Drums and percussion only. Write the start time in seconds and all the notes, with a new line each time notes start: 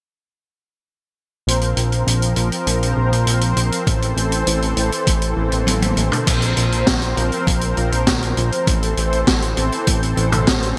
1.48 closed hi-hat
1.61 closed hi-hat
1.77 closed hi-hat
1.92 closed hi-hat
2.07 closed hi-hat
2.22 closed hi-hat
2.36 closed hi-hat
2.52 closed hi-hat
2.67 closed hi-hat
2.83 closed hi-hat
3.13 closed hi-hat
3.27 closed hi-hat
3.41 closed hi-hat
3.57 closed hi-hat
3.72 closed hi-hat
3.87 kick, closed hi-hat
4.02 closed hi-hat
4.17 closed hi-hat
4.32 closed hi-hat
4.47 closed hi-hat
4.62 closed hi-hat
4.77 closed hi-hat
4.92 closed hi-hat
5.07 kick, closed hi-hat
5.22 closed hi-hat
5.52 closed hi-hat
5.67 closed hi-hat, high tom
5.82 closed hi-hat, high tom
5.97 closed hi-hat
6.12 closed hi-hat, mid tom
6.27 kick, closed hi-hat, crash
6.42 closed hi-hat
6.57 closed hi-hat
6.72 closed hi-hat
6.87 kick, snare, closed hi-hat
7.02 closed hi-hat
7.17 closed hi-hat
7.32 closed hi-hat
7.47 kick, closed hi-hat
7.61 closed hi-hat
7.77 closed hi-hat
7.92 closed hi-hat
8.07 kick, snare, closed hi-hat
8.22 closed hi-hat
8.37 closed hi-hat
8.52 closed hi-hat
8.67 kick, closed hi-hat
8.83 closed hi-hat
8.97 closed hi-hat
9.13 closed hi-hat
9.27 kick, snare, closed hi-hat
9.42 closed hi-hat
9.57 closed hi-hat
9.72 closed hi-hat
9.87 kick, closed hi-hat
10.03 closed hi-hat
10.17 closed hi-hat
10.32 closed hi-hat, mid tom
10.47 kick, snare, closed hi-hat
10.62 closed hi-hat